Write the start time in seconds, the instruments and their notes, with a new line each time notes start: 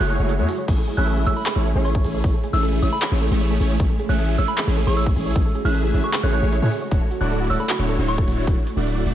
Already playing: ambient pad C#3 F#3 G#3 A3 E4
0.00 808-style bass F#1, supersaw synth A3 E4 F#4 G#4 C#5, synth bell F#6
0.10 synth arpeggio sound G#5, synth bell F#6, closed hi-hat
0.19 808-style bass F#1, supersaw synth A3 E4 F#4 G#4 C#5, synth arpeggio sound F#4
0.29 synth arpeggio sound C#5, closed hi-hat
0.39 808-style bass F#2, supersaw synth A3 E4 F#4 G#4 C#5, synth arpeggio sound A4
0.49 synth arpeggio sound F#4, open hi-hat
0.58 synth arpeggio sound C#5
0.68 808-style bass A1, ambient pad C#3 E3 G#3 A3, supersaw synth A3 C#4 E4 G#4 C#5, synth arpeggio sound C#5, kick, closed hi-hat, crash
0.78 synth arpeggio sound A4
0.88 synth arpeggio sound G#4, closed hi-hat
0.97 808-style bass A1, supersaw synth A3 C#4 E4 G#4 E5, synth arpeggio sound C#5, synth bell F#6
1.07 synth arpeggio sound A4, closed hi-hat
1.17 synth arpeggio sound G#4
1.27 808-style bass A1, supersaw synth A3 C#4 E4 G#4 E5, synth arpeggio sound C#5, synth bell E6, closed hi-hat
1.36 synth arpeggio sound A4, synth bell B5
1.46 synth arpeggio sound G#4, clap, closed hi-hat
1.56 808-style bass A1, supersaw synth A3 C#4 E4 G#4 C#5, synth arpeggio sound C#5
1.66 synth arpeggio sound A4, closed hi-hat
1.75 808-style bass A1, supersaw synth A3 C#4 E4 G#4 C#5, synth arpeggio sound G#4
1.85 synth arpeggio sound C#5, synth bell C#6, closed hi-hat
1.95 synth arpeggio sound A4, kick
2.04 808-style bass A1, supersaw synth A3 C#4 E4 G#4 C#5, synth arpeggio sound G#4, open hi-hat
2.14 synth arpeggio sound C#5
2.24 808-style bass A1, supersaw synth A3 C#4 E4 G#4 C#5, synth arpeggio sound C#5, kick, closed hi-hat
2.34 synth arpeggio sound A4
2.44 synth arpeggio sound G#4, closed hi-hat
2.53 808-style bass A1, supersaw synth A3 C#4 E4 G#4 E5, synth arpeggio sound C#5, synth bell E6
2.63 synth arpeggio sound A4, closed hi-hat
2.73 synth arpeggio sound G#4
2.82 808-style bass A1, supersaw synth A3 C#4 E4 G#4 E5, synth arpeggio sound C#5, synth bell E6, closed hi-hat
2.92 synth arpeggio sound A4, synth bell B5
3.02 synth arpeggio sound G#4, clap, closed hi-hat
3.12 808-style bass A1, supersaw synth A3 C#4 E4 G#4 C#5, synth arpeggio sound C#5
3.21 synth arpeggio sound A4, closed hi-hat
3.31 808-style bass A1, supersaw synth A3 C#4 E4 G#4 C#5, synth arpeggio sound G#4
3.41 synth arpeggio sound C#5, closed hi-hat
3.51 synth arpeggio sound A4
3.60 808-style bass A1, supersaw synth A3 C#4 E4 G#4 C#5, synth arpeggio sound G#4, open hi-hat
3.70 synth arpeggio sound C#5
3.80 808-style bass A1, supersaw synth A3 C#4 E4 G#4 C#5, ambient pad F#4, synth arpeggio sound C#5, kick, closed hi-hat
3.90 synth arpeggio sound A4
3.99 synth arpeggio sound G#4, closed hi-hat
4.09 808-style bass A1, supersaw synth A3 C#4 E4 G#4 E5, synth arpeggio sound C#5, synth bell F#6
4.19 synth arpeggio sound A4, closed hi-hat
4.29 synth arpeggio sound G#4
4.38 808-style bass A1, supersaw synth A3 C#4 E4 G#4 E5, synth arpeggio sound C#5, synth bell E6, closed hi-hat
4.48 synth arpeggio sound A4, synth bell B5
4.58 synth arpeggio sound G#4, clap, closed hi-hat
4.67 808-style bass A1, supersaw synth A3 C#4 E4 G#4 C#5, synth arpeggio sound C#5
4.77 synth arpeggio sound A4, closed hi-hat
4.87 808-style bass A1, supersaw synth A3 C#4 E4 G#4 C#5, synth arpeggio sound G#4, synth bell C#6
4.97 synth arpeggio sound C#5, synth bell E6, closed hi-hat
5.06 synth arpeggio sound A4, kick
5.16 808-style bass A1, supersaw synth A3 C#4 E4 G#4 C#5, synth arpeggio sound G#4, open hi-hat
5.26 synth arpeggio sound C#5
5.36 808-style bass A1, supersaw synth A3 C#4 E4 G#4 C#5, synth arpeggio sound C#5, kick, closed hi-hat
5.45 synth arpeggio sound A4
5.55 synth arpeggio sound G#4, closed hi-hat
5.65 808-style bass A1, supersaw synth A3 C#4 E4 G#4 E5, synth arpeggio sound C#5, synth bell F#6
5.75 synth arpeggio sound A4, closed hi-hat
5.84 synth arpeggio sound G#4
5.94 808-style bass A1, supersaw synth A3 C#4 E4 G#4 E5, synth arpeggio sound C#5, closed hi-hat
6.04 synth arpeggio sound A4, synth bell C#6
6.13 synth arpeggio sound G#4, clap, closed hi-hat
6.23 808-style bass A1, supersaw synth A3 C#4 E4 G#4 C#5, synth arpeggio sound C#5, synth bell F#6
6.33 synth arpeggio sound A4, synth bell F#6, closed hi-hat
6.43 808-style bass A1, supersaw synth A3 C#4 E4 G#4 C#5, synth arpeggio sound G#4
6.53 synth arpeggio sound C#5, closed hi-hat
6.62 808-style bass A2, supersaw synth A3 C#4 E4 G#4 C#5, synth arpeggio sound A4
6.72 synth arpeggio sound G#4, open hi-hat
6.82 synth arpeggio sound C#5
6.91 808-style bass D1, ambient pad D3 F#3 C#4 E4, supersaw synth A3 D4 E4 F#4 C#5, synth arpeggio sound C#5, kick, closed hi-hat
7.01 synth arpeggio sound A4
7.11 synth arpeggio sound F#4, closed hi-hat
7.21 808-style bass D1, supersaw synth A3 D4 E4 F#4 D5, synth arpeggio sound C#5, synth bell F#6
7.30 synth arpeggio sound A4, closed hi-hat
7.40 synth arpeggio sound F#4
7.50 808-style bass D1, supersaw synth A3 D4 E4 F#4 D5, synth arpeggio sound C#5, synth bell E6, closed hi-hat
7.60 synth arpeggio sound A4, synth bell B5
7.69 synth arpeggio sound F#4, clap, closed hi-hat
7.79 808-style bass D1, supersaw synth A3 D4 E4 F#4 C#5, synth arpeggio sound C#5
7.89 synth arpeggio sound A4, closed hi-hat
7.99 808-style bass D1, supersaw synth A3 D4 E4 F#4 C#5, synth arpeggio sound F#4
8.08 synth arpeggio sound C#5, synth bell C#6, closed hi-hat
8.18 synth arpeggio sound A4, kick
8.28 808-style bass D1, supersaw synth A3 D4 E4 F#4 C#5, synth arpeggio sound F#4, open hi-hat
8.38 synth arpeggio sound C#5
8.47 808-style bass D1, supersaw synth A3 D4 E4 F#4 C#5, kick, closed hi-hat
8.67 closed hi-hat
8.76 808-style bass D1, supersaw synth A3 D4 E4 F#4 D5
8.86 closed hi-hat
9.06 808-style bass D1, supersaw synth A3 D4 E4 F#4 D5, closed hi-hat